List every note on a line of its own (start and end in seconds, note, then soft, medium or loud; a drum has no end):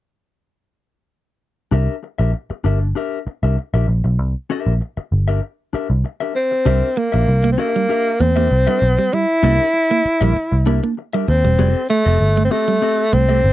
1.71 1.87 C2 loud
1.71 1.94 D4 medium
1.71 1.94 G4 medium
1.71 1.95 A#4 medium
1.71 1.95 E5 medium
2.03 muted clean electric guitar stroke soft
2.18 2.32 A#1 medium
2.18 2.32 D4 soft
2.18 2.33 G4 medium
2.18 2.33 A#4 medium
2.18 2.33 E5 medium
2.33 muted clean electric guitar stroke soft
2.50 muted clean electric guitar stroke soft
2.50 muted picked electric bass stroke soft
2.64 2.92 G1 medium
2.64 2.87 D4 medium
2.64 2.81 G4 medium
2.64 2.81 A#4 medium
2.64 2.80 E5 medium
2.81 muted clean electric guitar stroke soft
2.95 3.18 D4 medium
2.95 3.18 G4 medium
2.95 3.18 A#4 medium
2.95 3.19 E5 medium
3.27 muted picked electric bass stroke soft
3.27 muted clean electric guitar stroke soft
3.43 3.56 C2 medium
3.43 3.56 D4 soft
3.43 3.57 G4 soft
3.43 3.57 A#4 medium
3.43 3.58 E5 medium
3.57 muted clean electric guitar stroke soft
3.74 3.87 A#1 medium
3.74 3.87 D4 medium
3.74 3.88 G4 medium
3.74 3.88 A#4 medium
3.74 3.88 E5 medium
3.88 4.03 A#1 medium
3.88 muted clean electric guitar stroke soft
4.04 4.19 B1 medium
4.04 muted clean electric guitar stroke soft
4.19 4.33 C2 loud
4.50 4.72 D4 medium
4.50 4.72 G4 medium
4.50 4.73 A#4 loud
4.50 4.73 E5 loud
4.67 4.79 A#1 medium
4.81 muted clean electric guitar stroke soft
4.97 muted clean electric guitar stroke soft
4.97 muted picked electric bass stroke soft
5.12 5.39 G1 medium
5.28 5.41 D4 medium
5.28 5.41 G4 medium
5.28 5.42 A#4 medium
5.28 5.42 E5 medium
5.73 5.91 D4 medium
5.73 5.90 G4 medium
5.73 5.89 A#4 medium
5.73 5.89 E5 medium
5.73 muted picked electric bass stroke soft
5.90 6.03 C2 medium
5.90 muted clean electric guitar stroke soft
6.04 muted clean electric guitar stroke soft
6.20 6.34 D4 medium
6.20 6.34 G4 medium
6.20 6.35 A#4 medium
6.20 6.35 E5 medium
6.35 6.99 C4 medium
6.35 muted clean electric guitar stroke soft
6.51 muted clean electric guitar stroke soft
6.65 6.81 C2 loud
6.65 6.78 G3 medium
6.65 6.88 D4 medium
6.65 6.88 G4 medium
6.65 6.89 A#4 loud
6.65 6.89 E5 loud
6.96 7.09 A#3 medium
6.96 7.52 A#3 medium
6.96 muted clean electric guitar stroke soft
7.12 7.27 A#1 medium
7.12 7.26 D4 medium
7.12 7.26 G4 soft
7.12 7.27 A#4 medium
7.12 7.28 E5 medium
7.12 muted clean electric guitar stroke soft
7.27 7.55 C2 loud
7.27 muted clean electric guitar stroke soft
7.43 7.55 A#3 medium
7.43 muted clean electric guitar stroke soft
7.52 7.60 C4 medium
7.58 8.22 A#3 medium
7.58 7.80 D4 medium
7.58 7.75 G4 medium
7.58 7.74 A#4 medium
7.58 7.73 E5 medium
7.58 muted clean electric guitar stroke soft
7.75 7.86 G3 medium
7.75 muted clean electric guitar stroke soft
7.89 8.11 D4 medium
7.89 8.12 G4 medium
7.89 8.12 A#4 medium
7.89 8.12 E5 medium
7.89 muted clean electric guitar stroke soft
8.20 8.48 E2 medium
8.20 8.32 A#3 medium
8.20 9.15 C4 loud
8.20 muted clean electric guitar stroke soft
8.36 8.47 A#3 medium
8.36 8.49 D4 medium
8.36 8.50 G4 medium
8.36 8.50 A#4 medium
8.36 8.50 E5 medium
8.51 8.66 C2 medium
8.67 8.78 G3 medium
8.67 8.80 D4 medium
8.67 8.81 G4 medium
8.67 8.81 A#4 medium
8.67 8.81 E5 medium
8.82 8.96 B1 medium
8.82 muted clean electric guitar stroke soft
8.98 9.09 G3 medium
8.98 muted clean electric guitar stroke soft
9.13 9.25 G3 medium
9.13 10.98 E4 loud
9.43 9.58 C2 loud
9.43 9.55 A#3 medium
9.43 9.65 D4 medium
9.43 9.65 G4 medium
9.43 9.66 A#4 loud
9.43 9.66 E5 medium
9.60 muted clean electric guitar stroke soft
9.74 muted clean electric guitar stroke soft
9.90 10.01 A#3 medium
9.90 muted clean electric guitar stroke soft
10.05 muted picked electric bass stroke soft
10.05 muted clean electric guitar stroke soft
10.21 10.34 A#1 medium
10.21 10.32 G3 medium
10.21 10.34 D4 medium
10.21 10.35 G4 medium
10.21 10.35 A#4 medium
10.21 10.35 E5 medium
10.35 muted clean electric guitar stroke soft
10.35 muted picked electric bass stroke soft
10.52 10.79 C2 medium
10.52 muted clean electric guitar stroke soft
10.66 10.79 A#3 medium
10.66 10.88 D4 medium
10.66 10.83 G4 medium
10.66 10.82 A#4 medium
10.66 10.81 E5 medium
10.83 10.94 A#3 medium
10.83 muted clean electric guitar stroke soft
10.97 muted clean electric guitar stroke soft
11.13 11.24 G3 medium
11.13 11.27 D4 medium
11.13 11.28 G4 medium
11.13 11.28 A#4 medium
11.13 11.29 E5 medium
11.28 11.43 D#2 medium
11.28 11.86 C4 medium
11.28 muted clean electric guitar stroke soft
11.44 11.57 E1 medium
11.44 11.55 G3 medium
11.44 muted clean electric guitar stroke soft
11.58 11.73 F1 loud
11.58 11.71 G3 medium
11.58 11.81 C4 medium
11.58 11.81 G4 medium
11.58 11.81 A4 loud
11.58 11.82 D#5 medium
11.89 12.41 A3 medium
11.89 12.02 A3 medium
11.89 muted clean electric guitar stroke soft
12.05 12.19 F1 medium
12.05 12.19 C4 medium
12.05 12.19 G4 medium
12.05 12.20 A4 medium
12.05 12.20 D#5 medium
12.05 muted clean electric guitar stroke soft
12.20 12.48 G1 loud
12.20 muted clean electric guitar stroke soft
12.36 12.48 A3 medium
12.36 muted clean electric guitar stroke soft
12.45 12.52 C4 medium
12.51 13.15 A3 medium
12.51 12.73 C4 medium
12.51 12.68 G4 medium
12.51 12.67 A4 medium
12.51 12.66 D#5 medium
12.51 muted clean electric guitar stroke soft
12.67 12.78 G3 medium
12.67 muted clean electric guitar stroke soft
12.82 13.04 C4 medium
12.82 13.04 G4 medium
12.82 13.05 A4 medium
12.82 13.05 D#5 medium
12.82 muted clean electric guitar stroke soft
13.13 13.40 C2 medium
13.13 13.25 A3 medium
13.13 13.53 C4 loud
13.13 muted clean electric guitar stroke soft
13.29 13.40 A3 medium
13.29 13.42 C4 soft
13.29 13.42 G4 medium
13.29 13.43 A4 medium
13.29 13.43 D#5 medium
13.44 13.53 G1 medium
13.44 muted clean electric guitar stroke soft